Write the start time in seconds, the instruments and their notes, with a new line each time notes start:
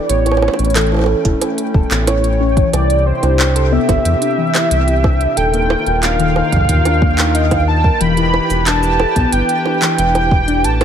Already playing: analog synth pad E4, synth texture G5
0.09 analog synth bass A1, analog synth pad A3 C#4, synth pluck B3, soft synth lead C#5, closed hi-hat
0.26 closed hi-hat, high bongo
0.32 high bongo
0.37 high bongo
0.42 high bongo
0.48 high bongo
0.54 high bongo
0.59 analog synth bass A1, synth pluck C#4, closed hi-hat
0.65 closed hi-hat
0.70 closed hi-hat
0.75 synth pluck E3, soft synth lead A4, clap, closed hi-hat
0.87 closed hi-hat
0.92 synth pluck E4, high bongo
0.94 high bongo
0.97 high bongo
0.99 high bongo
1.01 high bongo
1.04 high bongo
1.06 high bongo
1.25 analog synth bass E1, synth pluck E4, kick, closed hi-hat
1.41 synth pluck C#4, closed hi-hat, high bongo
1.58 closed hi-hat
1.74 analog synth bass E1, synth pluck A4, kick
1.91 analog synth bass A1, synth pluck B3, clap, closed hi-hat
2.07 soft synth lead C#5, closed hi-hat, high bongo
2.24 closed hi-hat
2.40 synth pluck C#4
2.57 synth pluck E3, kick, closed hi-hat
2.73 analog synth bass C2, analog synth pad C3 C4 G4, synth pluck E4, soft synth lead D5, closed hi-hat, high bongo
2.90 closed hi-hat
3.06 synth pluck E4, soft synth lead C5
3.23 analog synth bass C2, synth pluck D4, closed hi-hat, high bongo
3.39 clap
3.56 synth pluck A4, closed hi-hat
3.72 synth pluck B3, soft synth lead E5
3.89 analog synth bass G1, kick, closed hi-hat, high bongo
4.05 analog synth bass E2, closed hi-hat
4.21 synth pluck D4, closed hi-hat
4.38 synth pluck E3
4.54 synth pluck E4, clap, closed hi-hat, high bongo
4.71 analog synth bass C2, closed hi-hat
4.88 synth pluck E4, closed hi-hat
5.04 synth pluck D4, kick, high bongo
5.21 closed hi-hat
5.37 analog synth bass D#1, analog synth pad D#3 D#4 F4 A#4, synth pluck A4, soft synth lead G5, closed hi-hat
5.54 synth pluck A#3, closed hi-hat
5.70 high bongo
5.86 analog synth bass D#1, closed hi-hat
6.03 synth pluck D4, soft synth lead F5, clap, closed hi-hat
6.19 synth pluck D#3, closed hi-hat
6.36 synth pluck D#4, high bongo
6.52 analog synth bass A#1, kick, closed hi-hat
6.57 kick
6.61 kick
6.65 kick
6.69 analog synth bass D#2, synth pluck D#4, kick, closed hi-hat
6.73 kick
6.77 kick
6.81 synth pluck D4, kick
6.85 closed hi-hat, high bongo
7.02 synth pluck A#3, kick
7.18 synth pluck D#4, clap, closed hi-hat
7.35 synth pluck D#5, closed hi-hat
7.51 kick, closed hi-hat, high bongo
7.68 soft synth lead A5
7.84 synth pluck A#4, kick
8.01 analog synth bass E1, synth pluck E3, analog synth pad E3 E4 G4 B4, soft synth lead B5, closed hi-hat
8.17 synth pluck E4, closed hi-hat
8.34 high bongo
8.50 analog synth bass E1, synth pluck E4, closed hi-hat, cabasa
8.67 synth pluck D4, soft synth lead A5, clap, closed hi-hat
8.83 cabasa
8.99 synth pluck A4, high bongo
9.16 analog synth bass B1, synth pluck B3, kick, closed hi-hat
9.32 analog synth bass G1, soft synth lead G5, closed hi-hat
9.49 closed hi-hat
9.65 synth pluck D4, high bongo
9.82 synth pluck E3, clap, closed hi-hat
9.98 analog synth bass E1, synth pluck E4, soft synth lead G5, closed hi-hat
10.15 closed hi-hat, high bongo
10.31 synth pluck E4, kick
10.48 synth pluck D4, closed hi-hat
10.64 analog synth bass A1, analog synth pad A3 C#4, soft synth lead A5, closed hi-hat
10.81 synth pluck A4, closed hi-hat, high bongo